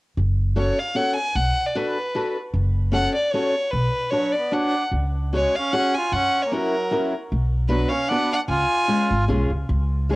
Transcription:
0.17 upright bass F#1
0.55 steel-string acoustic guitar C#4 F#4 A4 C#5, violin C#5
0.79 violin F5
0.94 steel-string acoustic guitar C#4 F#4 A4 C#5, violin F#5
1.16 violin G#5
1.35 upright bass B1, violin F#5
1.67 violin D5
1.76 steel-string acoustic guitar D4 F#4 A4 B4, violin B4
2.15 steel-string acoustic guitar D4 F#4 A4 B4
2.54 upright bass F#1
2.92 steel-string acoustic guitar C#4 F#4 A4 C#5, violin F#5
3.16 violin D5
3.32 steel-string acoustic guitar C#4 F#4 A4 C#5, violin C#5
3.72 upright bass B1, violin B4
4.11 steel-string acoustic guitar D4 F#4 B4 C#5, violin C#5
4.16 accordion F#3
4.32 violin D5
4.37 accordion B3
4.51 steel-string acoustic guitar D4 F#4 B4 C#5, accordion D4, violin F#5
4.91 upright bass C#2
5.33 steel-string acoustic guitar C#4 F#4 G#4 C#5, violin C#5
5.37 accordion G#3
5.56 accordion C#4, violin F5
5.73 steel-string acoustic guitar C#4 F#4 G#4 C#5, violin F#5
5.77 accordion C#4
5.94 accordion F4, violin G#5
6.12 upright bass F#2, accordion C#4, violin F#5
6.42 accordion A#3, violin C#5
6.51 accordion F#3, steel-string acoustic guitar C#4 E4 F#4 A#4, violin A#4
6.91 steel-string acoustic guitar C#4 E4 F#4 A#4
7.32 upright bass B1
7.68 accordion F#3, steel-string acoustic guitar B3 D4 F#4 B4, violin B4
7.89 accordion C#4, violin F5
8.09 steel-string acoustic guitar B3 D4 F#4 B4, accordion D4, violin F#5
8.31 accordion D4, violin F#5
8.48 upright bass C#2, accordion F4, violin G#5
8.88 steel-string acoustic guitar G#3 C#4 F4 G#4
9.11 upright bass G#1
9.28 upright bass B1, steel-string acoustic guitar G#3 C#4 F4 G#4
9.50 upright bass C#2
9.69 upright bass C#2
10.09 steel-string acoustic guitar G#3 C#4 F#4 G#4, violin C#5

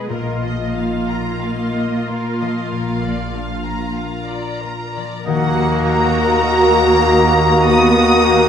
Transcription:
Already playing: harp B2 G#3 B3 D#4 G#4 D#5
0.09 double bass section A#1, harp A#2, cello section A#3, viola section F4, violin section A#4 D#5
0.43 harp F3, violin section D#5
0.76 harp D#4, violin section F5
1.08 harp F4, violin section A#5
1.42 harp A#4, violin section D#5 F5
1.76 harp F4, violin section D#5
2.09 harp A#3, violin section A#4 F5
2.40 harp F3, violin section D#5
2.72 double bass section A#1, harp A#2, violin section A#4
3.03 harp F3, violin section D5
3.34 harp D4, violin section F5
3.64 harp F4, violin section A#5
3.95 harp A#4, violin section F5 A#5
4.25 violin section D5
4.30 harp F4
4.60 violin section A#4
4.64 harp A#3
4.93 harp F3, violin section D5
5.23 double bass section D#2, harp D#3, viola section A#3 F#4, bassoon A#3, clarinet F#4, violin section A#4, oboe D#5, flute section A#5
5.28 cello section D#2, french horn section A#3 F#4, violin section F#5
5.57 harp A#3
5.86 harp F#4, violin section A#5
6.15 harp A#4
6.43 viola section A#3, harp D#5
6.74 harp A#4
7.05 harp D#4
7.38 harp A#3
7.66 harp D#3, viola section B3 F#4, violin section F#4 D#6
7.97 harp D#4
8.24 viola section A#3, harp F#4, violin section A#4

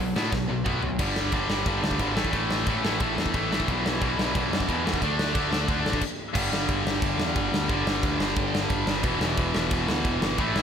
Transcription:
0.00 picked electric bass B1, distorted electric guitar B2 F#3
0.16 picked electric bass A2, distorted electric guitar B2 F#3 B3, snare
0.32 picked electric bass B1, distorted electric guitar B2 F#3, kick, snare
0.49 picked electric bass B1, distorted electric guitar B2 F#3
0.65 picked electric bass B1, distorted electric guitar B2 F#3 B3, kick, mid tom
0.83 picked electric bass B1, distorted electric guitar B2 F#3, floor tom
0.99 picked electric bass G1, distorted electric guitar G2 D3 G3, kick, crash
1.16 snare
1.32 picked electric bass G1, distorted electric guitar G2 D3 G3, kick, crash
1.49 picked electric bass G1, distorted electric guitar G2 D3 G3, snare
1.66 picked electric bass G1, distorted electric guitar G2 D3 G3, kick, crash
1.82 picked electric bass D2, snare
1.91 kick
1.99 picked electric bass G#1, distorted electric guitar G2 D3 G3, kick, crash
2.15 picked electric bass A1, distorted electric guitar A2 E3 A3, snare
2.25 kick
2.32 picked electric bass A1, distorted electric guitar A2 E3 A3, kick, crash
2.51 snare
2.66 picked electric bass A1, distorted electric guitar A2 E3 A3, kick, crash
2.84 picked electric bass A1, distorted electric guitar A2 E3 A3, snare
3.00 picked electric bass A1, distorted electric guitar A2 E3 A3, kick, crash
3.17 picked electric bass E2, snare
3.26 kick
3.34 picked electric bass A1, distorted electric guitar A2 E3 A3, kick, crash
3.52 distorted electric guitar A2 E3 A3, snare
3.60 kick
3.68 picked electric bass B1, distorted electric guitar E2 B2 E3, kick, crash
3.86 snare
4.01 picked electric bass B1, distorted electric guitar E2 B2 E3, kick, crash
4.17 picked electric bass B1, distorted electric guitar E2 B2 E3, snare
4.35 picked electric bass B1, distorted electric guitar E2 B2 E3, kick, crash
4.51 picked electric bass F#2, snare
4.60 kick
4.68 distorted electric guitar E2 B2 E3, picked electric bass E2, kick, crash
4.85 distorted electric guitar E2 B2 E3, snare
4.94 kick
5.02 picked electric bass D2, distorted electric guitar D3 A3 D4, kick, crash
5.19 snare
5.34 picked electric bass D2, distorted electric guitar D3 A3 D4, kick, crash
5.50 picked electric bass D2, distorted electric guitar D3 A3 D4, snare
5.68 picked electric bass D2, distorted electric guitar D3 A3 D4, kick, crash
5.85 picked electric bass A1, snare
5.93 kick
6.01 kick, crash
6.33 picked electric bass G1, distorted electric guitar G2 D3 G3, kick, crash
6.52 picked electric bass G1, snare
6.69 picked electric bass G1, kick, crash
6.85 picked electric bass G1, snare
7.02 picked electric bass G1, kick, crash
7.18 picked electric bass E2, snare
7.36 picked electric bass G1, kick, crash
7.52 picked electric bass D2, snare
7.69 picked electric bass G1, distorted electric guitar G2 D3 G3, kick, crash
7.86 picked electric bass G1, snare
8.03 picked electric bass D2, kick, crash
8.20 picked electric bass G1, snare
8.36 picked electric bass G1, kick, crash
8.55 snare
8.70 picked electric bass G1, kick, crash
8.86 picked electric bass G1, snare
9.03 picked electric bass E1, distorted electric guitar E2 B2 E3, kick, crash
9.21 picked electric bass E1, snare
9.37 picked electric bass E1, kick, crash
9.55 picked electric bass E1, snare
9.71 picked electric bass E1, kick, crash
9.88 picked electric bass D2, snare
10.05 picked electric bass E1, kick, crash
10.21 picked electric bass G1, snare
10.38 picked electric bass A1, distorted electric guitar A2 E3 A3, kick, crash
10.55 picked electric bass A1, snare

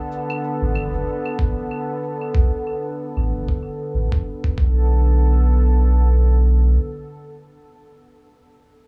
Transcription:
Already playing: analog synth pad D3 B3 A4
0.12 cabasa
0.30 cabasa, claves
0.44 cabasa
0.62 sub bass A1
0.75 sub bass F#1, cabasa, claves
0.94 sub bass F#1, cabasa
1.07 cabasa
1.25 claves
1.39 sub bass A1, kick, cabasa
1.58 cabasa
1.71 cabasa, claves
2.03 cabasa
2.21 cabasa, claves
2.35 sub bass B1, kick
2.67 cabasa, claves
2.85 cabasa
2.99 cabasa
3.17 sub bass A1, claves
3.30 sub bass F#1, cabasa
3.48 sub bass F#1, kick, cabasa
3.63 cabasa, claves
3.94 sub bass A1, cabasa
4.12 kick, cabasa, claves
4.44 kick
4.58 sub bass B1, analog synth pad D3 B3 A4, kick

